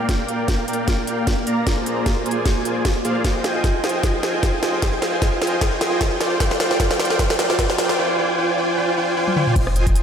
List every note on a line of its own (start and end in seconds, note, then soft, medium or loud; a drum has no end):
0.09 0.66 A#3 medium
0.09 0.66 A#4 medium
0.09 0.66 D5 medium
0.09 0.66 F5 medium
0.09 0.66 G5 medium
0.09 kick medium
0.09 snare medium
0.09 closed hi-hat medium
0.28 closed hi-hat medium
0.48 kick loud
0.48 snare medium
0.48 closed hi-hat medium
0.68 1.45 A#3 medium
0.68 1.45 A#4 medium
0.68 1.45 D5 medium
0.68 1.45 F5 medium
0.68 1.45 G5 medium
0.68 closed hi-hat medium
0.73 closed hi-hat medium
0.88 kick loud
0.88 snare medium
0.88 closed hi-hat medium
1.07 closed hi-hat medium
1.27 kick medium
1.27 snare medium
1.27 closed hi-hat medium
1.47 1.65 A#3 medium
1.47 1.65 A#4 medium
1.47 1.64 D5 medium
1.47 1.64 F5 medium
1.47 1.64 A#5 medium
1.47 closed hi-hat medium
1.67 2.24 A#3 medium
1.67 2.24 F4 medium
1.67 2.24 G#4 medium
1.67 2.24 C5 medium
1.67 2.24 D5 medium
1.67 2.24 A#5 medium
1.67 kick medium
1.67 snare medium
1.67 closed hi-hat medium
1.86 closed hi-hat medium
2.06 kick loud
2.06 snare medium
2.06 closed hi-hat medium
2.26 2.83 A#3 medium
2.26 2.83 F4 medium
2.26 2.83 G#4 medium
2.26 2.83 C5 medium
2.26 2.83 D5 medium
2.26 2.83 G#5 medium
2.26 closed hi-hat soft
2.31 closed hi-hat medium
2.46 kick loud
2.46 snare medium
2.46 closed hi-hat medium
2.65 closed hi-hat medium
2.85 kick loud
2.85 snare medium
2.85 closed hi-hat medium
3.05 3.22 A#3 loud
3.05 3.22 F4 medium
3.05 3.22 G#4 medium
3.05 3.22 C5 medium
3.05 3.22 D5 medium
3.05 3.22 F5 loud
3.05 closed hi-hat medium
3.24 3.82 F4 medium
3.24 3.82 C5 medium
3.24 3.82 D#5 medium
3.24 3.82 G5 medium
3.24 3.82 G#5 medium
3.24 kick medium
3.24 snare medium
3.24 closed hi-hat medium
3.44 snare medium
3.44 closed hi-hat medium
3.64 kick loud
3.64 snare medium
3.64 closed hi-hat medium
3.84 4.02 F4 medium
3.84 4.02 C5 medium
3.84 4.02 D#5 medium
3.84 4.02 G5 medium
3.84 4.02 G#5 medium
3.84 snare medium
3.84 closed hi-hat soft
3.89 closed hi-hat medium
4.03 4.61 F4 medium
4.03 4.61 C5 medium
4.03 4.61 D#5 medium
4.03 4.61 G5 medium
4.03 4.61 G#5 medium
4.03 kick loud
4.03 snare medium
4.03 closed hi-hat medium
4.23 snare medium
4.23 closed hi-hat medium
4.43 kick loud
4.43 snare medium
4.43 closed hi-hat medium
4.63 4.81 F4 medium
4.63 4.81 C5 medium
4.63 4.81 D#5 medium
4.63 4.81 G5 medium
4.63 4.81 G#5 medium
4.63 snare medium
4.63 closed hi-hat medium
4.82 5.39 F4 medium
4.82 5.39 C5 medium
4.82 5.39 D#5 medium
4.82 5.39 G5 medium
4.82 5.39 G#5 medium
4.82 kick loud
4.82 snare medium
4.82 closed hi-hat medium
5.02 snare medium
5.02 closed hi-hat medium
5.22 kick loud
5.22 snare medium
5.22 closed hi-hat medium
5.42 5.60 F4 medium
5.42 5.60 C5 medium
5.42 5.60 D#5 medium
5.42 5.60 G5 medium
5.42 5.60 G#5 medium
5.42 snare medium
5.42 closed hi-hat soft
5.47 closed hi-hat medium
5.61 6.18 F4 medium
5.61 6.18 C5 medium
5.61 6.18 D#5 medium
5.61 6.18 G5 medium
5.61 6.18 G#5 medium
5.61 kick loud
5.61 snare medium
5.61 closed hi-hat medium
5.81 snare medium
5.81 closed hi-hat medium
6.01 kick loud
6.01 snare medium
6.01 closed hi-hat medium
6.20 6.39 F4 medium
6.20 6.39 C5 medium
6.20 6.39 D5 medium
6.20 6.39 G5 medium
6.20 snare medium
6.20 closed hi-hat medium
6.40 6.78 F4 medium
6.40 6.78 C5 medium
6.40 6.78 D5 medium
6.40 6.78 G5 medium
6.40 kick medium
6.40 snare medium
6.40 closed hi-hat medium
6.51 snare medium
6.60 snare medium
6.60 closed hi-hat medium
6.71 snare medium
6.80 7.18 F4 medium
6.80 7.18 C5 medium
6.80 7.18 D5 medium
6.80 7.18 G5 medium
6.80 kick loud
6.80 snare medium
6.80 closed hi-hat medium
6.91 snare medium
7.00 snare loud
7.00 closed hi-hat soft
7.05 closed hi-hat medium
7.10 snare medium
7.19 7.57 F4 medium
7.19 7.57 C5 medium
7.19 7.57 D5 medium
7.19 7.57 G5 medium
7.19 kick loud
7.19 snare loud
7.19 closed hi-hat medium
7.30 snare medium
7.39 snare loud
7.39 closed hi-hat medium
7.50 snare medium
7.59 7.97 F4 medium
7.59 7.97 C5 medium
7.59 7.97 D5 medium
7.59 7.97 G5 medium
7.59 kick loud
7.59 snare loud
7.59 closed hi-hat medium
7.70 snare medium
7.78 snare loud
7.78 closed hi-hat medium
7.89 snare medium
7.98 8.17 F4 medium
7.98 8.17 C5 medium
7.98 8.17 D5 medium
7.98 8.17 G5 medium
7.98 8.17 G#5 medium
8.18 8.36 F4 medium
8.18 8.36 C5 medium
8.18 8.36 D5 medium
8.18 8.36 G5 medium
8.18 8.36 G#5 medium
8.38 8.56 F4 medium
8.38 8.56 C5 medium
8.38 8.56 D5 medium
8.38 8.56 G5 medium
8.38 8.56 G#5 medium
8.57 8.76 F4 medium
8.57 8.76 C5 medium
8.57 8.76 D5 medium
8.57 8.76 G5 medium
8.57 8.76 G#5 medium
8.77 8.95 F4 medium
8.77 8.95 C5 medium
8.77 8.95 D5 medium
8.77 8.95 G5 medium
8.77 8.95 G#5 medium
8.97 9.15 F4 medium
8.97 9.15 C5 medium
8.97 9.15 D5 medium
8.97 9.15 G5 medium
8.97 9.15 G#5 medium
9.17 9.35 F4 medium
9.17 9.35 C5 medium
9.17 9.35 D5 medium
9.17 9.35 G5 medium
9.17 9.35 G#5 medium
9.28 high tom medium
9.36 9.55 F4 medium
9.36 9.55 C5 medium
9.36 9.55 D5 medium
9.36 9.55 G5 medium
9.36 9.55 G#5 medium
9.36 mid tom medium
9.47 mid tom medium
9.56 10.03 F1 loud
9.56 10.03 F4 medium
9.56 10.03 C5 medium
9.56 10.03 D#5 medium
9.56 10.03 G5 medium
9.56 10.03 G#5 medium
9.56 kick loud
9.56 closed hi-hat medium
9.56 crash loud
9.67 cross-stick medium
9.76 closed hi-hat medium
9.87 kick loud
9.87 closed hi-hat medium
9.96 closed hi-hat medium